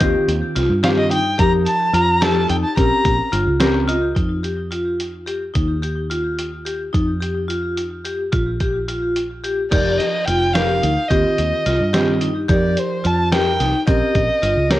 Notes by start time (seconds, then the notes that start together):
0.00 D#2 D#3 C4 F4 G4, kick, closed hi-hat
0.28 D#2, closed hi-hat
0.55 C2 F4, snare, closed hi-hat
0.69 G2
0.83 D#3 C4 F4 G4 F5, snare, closed hi-hat
0.98 D#5
1.11 D#4 G5, closed hi-hat
1.38 F2 F3 D#4 G4 A#4 A#5, kick, closed hi-hat
1.66 A5, closed hi-hat
1.93 F2 F4 A#5, closed hi-hat
2.21 F3 D#4 G4 A4 A5, snare, closed hi-hat
2.48 F2 D#4 G5, closed hi-hat
2.64 A5
2.76 A#1 C4 C#4 G4 A#4 A#5, kick, closed hi-hat
3.05 A#1, kick, closed hi-hat
3.32 G1 F4, closed hi-hat
3.47 C#2
3.60 C4 C#4 G4 A#4 A#5, snare, closed hi-hat
3.88 F4 D#5, closed hi-hat
4.15 F2 D#4, kick, closed hi-hat
4.43 G4, closed hi-hat
4.71 F4, closed hi-hat
5.00 closed hi-hat
5.26 G4, closed hi-hat
5.54 D#2 D#4, kick, closed hi-hat
5.82 G4, closed hi-hat
6.10 F4, closed hi-hat
6.39 closed hi-hat
6.65 G4, closed hi-hat
6.93 F2 D#4, kick, closed hi-hat
7.21 G4, closed hi-hat
7.48 F4, closed hi-hat
7.77 closed hi-hat
8.05 G4, closed hi-hat
8.32 A#1 F4, kick, closed hi-hat
8.60 G4, kick, closed hi-hat
8.88 F4, closed hi-hat
9.16 closed hi-hat
9.44 G4, closed hi-hat
9.71 F1 F3 D#4 G4 A#4 D5, kick, closed hi-hat, crash
9.98 D#5, snare, closed hi-hat
10.25 F1 F4 G5, closed hi-hat
10.54 F3 D#4 G4 A#4 F5, snare, closed hi-hat
10.82 D2 D#4, closed hi-hat
11.09 D#2 D#3 C4 F4 G4 D#5, kick, closed hi-hat
11.38 D#2, closed hi-hat
11.66 C2 F4, snare, closed hi-hat
11.80 G2
11.93 D#3 C4 F4 G4, snare, closed hi-hat
12.21 D#4, closed hi-hat
12.48 F2 F3 D#4 G4 A#4 D5, kick, closed hi-hat
12.77 C5, closed hi-hat
13.04 F2 F4 A5, closed hi-hat
13.31 F3 D#4 G4 A#4 G5, snare, closed hi-hat
13.60 C2 D#4, snare, closed hi-hat
13.87 A#1 C4 C#4 G4 A#4 D#5, kick, closed hi-hat
14.15 A#1, kick, closed hi-hat
14.42 G1 F4, closed hi-hat
14.56 C#2
14.70 A#3 C#4 G4 A#4 C#5, snare, closed hi-hat